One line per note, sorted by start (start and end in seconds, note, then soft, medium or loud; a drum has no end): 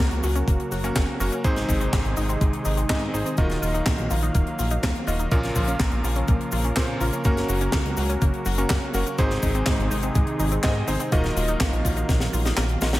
0.00 1.40 C#3 medium
0.00 1.43 F#3 medium
0.00 0.81 A#3 loud
0.00 1.40 A#3 medium
0.00 0.81 C#4 medium
0.00 0.81 F#4 medium
0.00 1.43 F#4 medium
0.00 0.81 A#4 loud
0.00 1.40 A#4 medium
0.11 0.21 C#2 loud
0.11 closed hi-hat medium
0.23 0.43 C#2 loud
0.23 0.35 F#4 medium
0.23 open hi-hat loud
0.23 cabasa medium
0.35 0.40 C#4 medium
0.35 closed hi-hat medium
0.35 cabasa medium
0.48 0.57 F#1 loud
0.48 0.55 A#3 medium
0.48 kick loud
0.48 closed hi-hat medium
0.48 cabasa soft
0.60 closed hi-hat soft
0.72 0.91 F#1 medium
0.72 0.83 F#4 medium
0.72 open hi-hat medium
0.72 cabasa medium
0.84 1.17 A#3 medium
0.84 0.89 C#4 medium
0.84 1.17 C#4 medium
0.84 1.17 F#4 medium
0.84 1.17 A#4 medium
0.84 closed hi-hat medium
0.84 cabasa medium
0.96 1.06 F#1 medium
0.96 1.04 A#3 medium
0.96 kick loud
0.96 snare loud
0.96 clap loud
0.96 closed hi-hat medium
0.96 cabasa soft
1.20 1.30 F#1 medium
1.20 1.41 A#3 medium
1.20 1.41 C#4 medium
1.20 1.32 F#4 medium
1.20 1.41 F#4 medium
1.20 1.41 A#4 medium
1.20 open hi-hat loud
1.20 cabasa medium
1.32 1.37 C#4 medium
1.32 closed hi-hat medium
1.32 cabasa medium
1.44 1.64 G#1 loud
1.44 2.87 G#2 loud
1.44 3.36 C3 medium
1.44 5.28 D#3 medium
1.44 3.36 G#3 medium
1.44 1.52 G#3 medium
1.44 2.87 C4 medium
1.44 3.36 D#4 medium
1.44 2.87 D#4 medium
1.44 3.36 G#4 medium
1.44 2.87 G#4 medium
1.44 2.87 C5 loud
1.44 kick loud
1.44 closed hi-hat medium
1.44 cabasa medium
1.56 snare soft
1.56 closed hi-hat medium
1.69 1.88 G#1 medium
1.69 1.80 D#4 medium
1.69 kick medium
1.69 open hi-hat loud
1.69 cabasa medium
1.81 1.85 C4 medium
1.81 closed hi-hat medium
1.81 cabasa medium
1.93 2.02 G#1 loud
1.93 2.01 G#3 medium
1.93 kick loud
1.93 snare loud
1.93 clap loud
1.93 closed hi-hat medium
1.93 cabasa soft
2.05 2.14 G#1 loud
2.05 closed hi-hat soft
2.16 2.36 G#1 loud
2.16 2.28 D#4 medium
2.16 open hi-hat loud
2.16 cabasa medium
2.29 2.34 C4 medium
2.29 closed hi-hat medium
2.29 cabasa medium
2.41 2.51 G#1 medium
2.41 2.49 G#3 medium
2.41 kick loud
2.41 closed hi-hat medium
2.41 cabasa soft
2.53 closed hi-hat soft
2.65 2.85 G#1 medium
2.65 2.77 D#4 medium
2.65 open hi-hat loud
2.65 cabasa medium
2.77 2.82 C4 medium
2.77 closed hi-hat medium
2.77 cabasa medium
2.89 3.09 G#2 medium
2.89 3.11 G#2 medium
2.89 2.97 G#3 medium
2.89 3.11 C4 medium
2.89 3.11 D#4 medium
2.89 3.11 G#4 medium
2.89 3.11 D#5 loud
2.89 kick loud
2.89 snare loud
2.89 clap loud
2.89 closed hi-hat medium
2.89 cabasa soft
3.14 3.23 G#1 medium
3.14 3.35 C4 medium
3.14 3.25 D#4 medium
3.14 3.35 D#4 medium
3.14 3.35 G#4 medium
3.14 3.35 C5 medium
3.14 open hi-hat loud
3.14 cabasa medium
3.26 3.30 C4 medium
3.26 closed hi-hat medium
3.26 cabasa medium
3.37 3.57 D#1 medium
3.37 4.68 D#3 medium
3.37 5.30 F#3 medium
3.37 3.46 A#3 medium
3.37 5.30 A#3 medium
3.37 4.68 F4 medium
3.37 4.68 F#4 medium
3.37 4.68 A#4 medium
3.37 4.68 D#5 loud
3.37 7.21 F5 medium
3.37 kick loud
3.37 closed hi-hat medium
3.37 cabasa soft
3.50 snare soft
3.50 closed hi-hat soft
3.62 3.81 D#1 medium
3.62 3.74 F4 medium
3.62 open hi-hat loud
3.62 cabasa medium
3.74 3.79 D#4 medium
3.74 closed hi-hat medium
3.74 cabasa medium
3.86 3.96 A#1 medium
3.86 3.94 A#3 medium
3.86 kick loud
3.86 snare loud
3.86 clap loud
3.86 closed hi-hat medium
3.86 cabasa soft
3.98 4.08 A#1 loud
3.98 closed hi-hat medium
4.10 4.30 A#1 loud
4.10 4.22 F4 medium
4.10 open hi-hat loud
4.10 cabasa medium
4.22 4.27 D#4 medium
4.22 closed hi-hat medium
4.22 cabasa medium
4.34 4.44 D#1 medium
4.34 4.43 A#3 medium
4.34 kick loud
4.34 closed hi-hat medium
4.34 cabasa medium
4.47 closed hi-hat soft
4.59 4.78 A#1 medium
4.59 4.70 F4 medium
4.59 open hi-hat loud
4.59 cabasa medium
4.70 4.76 D#4 medium
4.70 closed hi-hat medium
4.70 cabasa medium
4.83 4.93 D#1 loud
4.83 4.91 A#3 medium
4.83 kick loud
4.83 snare loud
4.83 clap medium
4.83 closed hi-hat medium
4.83 cabasa soft
4.95 closed hi-hat medium
5.07 5.26 D#1 loud
5.07 5.29 A#3 medium
5.07 5.19 F4 medium
5.07 5.29 F4 medium
5.07 5.29 F#4 medium
5.07 5.29 A#4 medium
5.07 5.29 D#5 medium
5.07 open hi-hat loud
5.07 cabasa medium
5.19 5.24 D#4 medium
5.19 closed hi-hat medium
5.19 cabasa medium
5.31 5.51 A#1 loud
5.31 6.74 A#2 loud
5.31 9.15 C#3 medium
5.31 7.23 F3 medium
5.31 6.74 A#3 medium
5.31 5.39 A#3 medium
5.31 9.15 A#3 medium
5.31 6.74 C#4 medium
5.31 6.74 F4 medium
5.31 6.74 A#4 loud
5.31 9.15 A#4 medium
5.31 kick loud
5.31 closed hi-hat medium
5.31 cabasa soft
5.43 snare soft
5.43 closed hi-hat medium
5.55 5.75 A#1 medium
5.55 5.67 F4 medium
5.55 kick medium
5.55 open hi-hat loud
5.55 cabasa medium
5.68 5.73 C#4 medium
5.68 closed hi-hat medium
5.68 cabasa medium
5.79 5.90 A#1 loud
5.79 5.88 A#3 medium
5.79 kick loud
5.79 snare loud
5.79 clap loud
5.79 closed hi-hat medium
5.79 cabasa soft
5.92 6.02 A#1 loud
5.92 closed hi-hat soft
6.04 6.23 A#1 loud
6.04 6.16 F4 medium
6.04 open hi-hat loud
6.04 cabasa medium
6.16 6.21 C#4 medium
6.16 closed hi-hat medium
6.16 cabasa medium
6.28 6.38 A#1 medium
6.28 6.36 A#3 medium
6.28 kick loud
6.28 closed hi-hat medium
6.28 cabasa soft
6.41 closed hi-hat medium
6.52 6.72 A#1 medium
6.52 6.64 F4 medium
6.52 open hi-hat loud
6.52 cabasa medium
6.64 6.69 C#4 medium
6.64 closed hi-hat medium
6.64 cabasa medium
6.76 6.96 A#2 medium
6.76 6.98 A#2 medium
6.76 6.85 A#3 medium
6.76 6.98 A#3 medium
6.76 6.98 C#4 medium
6.76 6.98 F4 medium
6.76 6.98 C5 loud
6.76 kick loud
6.76 snare loud
6.76 clap medium
6.76 closed hi-hat medium
6.76 cabasa soft
7.00 7.10 A#1 medium
7.00 7.22 A#3 medium
7.00 7.22 C#4 medium
7.00 7.12 F4 medium
7.00 7.22 F4 medium
7.00 7.22 A#4 medium
7.00 open hi-hat loud
7.00 cabasa medium
7.13 7.18 C#4 medium
7.13 closed hi-hat medium
7.13 cabasa medium
7.24 7.44 F#1 medium
7.24 9.17 F#3 medium
7.24 8.55 A#3 medium
7.24 7.33 A#3 medium
7.24 8.55 C#4 medium
7.24 9.17 F#4 medium
7.24 8.55 F#4 medium
7.24 8.55 A#4 loud
7.24 kick loud
7.24 closed hi-hat medium
7.24 cabasa soft
7.37 snare soft
7.37 closed hi-hat medium
7.48 7.68 F#1 medium
7.48 7.61 F#4 medium
7.48 open hi-hat loud
7.48 cabasa medium
7.61 7.66 C#4 medium
7.61 closed hi-hat medium
7.61 cabasa medium
7.72 7.83 C#2 medium
7.72 7.81 A#3 medium
7.72 kick loud
7.72 snare loud
7.72 clap medium
7.72 closed hi-hat medium
7.72 cabasa soft
7.85 7.95 C#2 loud
7.85 closed hi-hat medium
7.97 8.17 C#2 loud
7.97 8.09 F#4 medium
7.97 open hi-hat loud
7.97 cabasa medium
8.09 8.14 C#4 medium
8.09 closed hi-hat medium
8.09 cabasa medium
8.21 8.31 F#1 loud
8.21 8.30 A#3 medium
8.21 kick loud
8.21 closed hi-hat medium
8.21 cabasa soft
8.34 closed hi-hat soft
8.45 8.65 F#1 medium
8.45 8.57 F#4 medium
8.45 open hi-hat loud
8.45 cabasa medium
8.58 8.92 A#3 medium
8.58 8.63 C#4 medium
8.58 8.92 C#4 medium
8.58 8.92 F#4 medium
8.58 8.92 A#4 medium
8.58 closed hi-hat medium
8.58 cabasa medium
8.70 8.80 F#1 medium
8.70 8.78 A#3 medium
8.70 kick loud
8.70 snare loud
8.70 clap loud
8.70 closed hi-hat medium
8.70 cabasa soft
8.94 9.04 F#1 medium
8.94 9.15 A#3 medium
8.94 9.15 C#4 medium
8.94 9.15 F#4 medium
8.94 9.06 F#4 medium
8.94 9.15 A#4 medium
8.94 open hi-hat loud
8.94 cabasa medium
9.06 9.11 C#4 medium
9.06 closed hi-hat medium
9.06 cabasa medium
9.18 9.38 G#1 loud
9.18 10.61 G#2 loud
9.18 11.10 C3 medium
9.18 11.10 D#3 medium
9.18 11.10 G#3 medium
9.18 9.26 G#3 medium
9.18 10.61 C4 medium
9.18 11.10 D#4 medium
9.18 10.61 D#4 loud
9.18 11.10 G#4 medium
9.18 10.61 G#4 loud
9.18 10.61 C5 loud
9.18 kick loud
9.18 closed hi-hat medium
9.18 cabasa soft
9.31 snare soft
9.31 closed hi-hat medium
9.43 9.62 G#1 medium
9.43 9.54 D#4 medium
9.43 kick medium
9.43 open hi-hat loud
9.43 cabasa medium
9.55 9.60 C4 medium
9.55 closed hi-hat medium
9.55 cabasa medium
9.66 9.77 G#1 loud
9.66 9.75 G#3 medium
9.66 kick loud
9.66 snare loud
9.66 clap loud
9.66 closed hi-hat medium
9.66 cabasa medium
9.79 9.89 G#1 loud
9.79 closed hi-hat medium
9.91 10.10 G#1 loud
9.91 10.03 D#4 medium
9.91 open hi-hat loud
9.91 cabasa medium
10.03 10.08 C4 medium
10.03 closed hi-hat medium
10.03 cabasa medium
10.15 10.25 G#1 medium
10.15 10.23 G#3 medium
10.15 kick loud
10.15 closed hi-hat medium
10.15 cabasa soft
10.27 closed hi-hat medium
10.40 10.59 G#1 medium
10.40 10.51 D#4 medium
10.40 open hi-hat loud
10.40 cabasa medium
10.51 10.56 C4 medium
10.51 closed hi-hat medium
10.51 cabasa medium
10.63 10.83 G#2 medium
10.63 10.85 G#2 medium
10.63 10.72 G#3 medium
10.63 10.85 C4 medium
10.63 10.85 D#4 medium
10.63 10.85 G#4 medium
10.63 10.85 D#5 loud
10.63 kick loud
10.63 snare loud
10.63 clap loud
10.63 closed hi-hat medium
10.63 cabasa soft
10.88 10.98 G#1 medium
10.88 11.09 C4 medium
10.88 10.99 D#4 medium
10.88 11.09 D#4 medium
10.88 11.09 G#4 medium
10.88 11.09 C5 medium
10.88 open hi-hat loud
10.88 cabasa medium
11.00 11.05 C4 medium
11.00 closed hi-hat medium
11.00 cabasa medium
11.12 11.31 D#1 medium
11.12 13.00 D#3 medium
11.12 12.42 D#3 loud
11.12 13.00 F#3 medium
11.12 11.20 A#3 medium
11.12 13.00 A#3 medium
11.12 12.42 F4 medium
11.12 12.42 F#4 medium
11.12 12.42 A#4 medium
11.12 12.42 D#5 loud
11.12 13.00 F5 medium
11.12 kick loud
11.12 closed hi-hat loud
11.12 cabasa soft
11.24 snare soft
11.24 closed hi-hat medium
11.36 11.56 D#1 medium
11.36 11.48 F4 medium
11.36 open hi-hat loud
11.36 cabasa medium
11.48 11.53 D#4 medium
11.48 closed hi-hat medium
11.48 cabasa medium
11.60 11.70 A#1 medium
11.60 11.68 A#3 medium
11.60 kick loud
11.60 snare loud
11.60 clap loud
11.60 closed hi-hat medium
11.60 cabasa soft
11.73 11.82 A#1 loud
11.73 closed hi-hat medium
11.85 12.04 A#1 loud
11.85 11.96 F4 medium
11.85 kick medium
11.85 open hi-hat loud
11.85 cabasa medium
11.97 12.02 D#4 medium
11.97 closed hi-hat medium
11.97 cabasa medium
12.09 12.28 A#1 loud
12.09 12.17 A#3 medium
12.09 kick loud
12.09 snare medium
12.09 closed hi-hat medium
12.09 cabasa soft
12.20 snare medium
12.20 closed hi-hat medium
12.33 12.52 A#1 medium
12.33 12.45 F4 medium
12.33 open hi-hat loud
12.33 cabasa medium
12.45 12.50 D#4 medium
12.45 snare medium
12.45 closed hi-hat medium
12.45 cabasa medium
12.57 12.77 A#1 medium
12.57 12.65 A#3 medium
12.57 snare medium
12.57 clap loud
12.57 closed hi-hat medium
12.57 cabasa soft
12.69 closed hi-hat medium
12.81 13.00 A#1 loud
12.81 13.00 A#3 medium
12.81 12.93 F4 medium
12.81 13.00 F4 medium
12.81 13.00 F#4 medium
12.81 13.00 A#4 medium
12.81 13.00 D#5 medium
12.81 snare loud
12.81 open hi-hat loud
12.81 cabasa medium
12.93 12.98 D#4 medium
12.93 snare medium
12.93 closed hi-hat medium
12.93 cabasa medium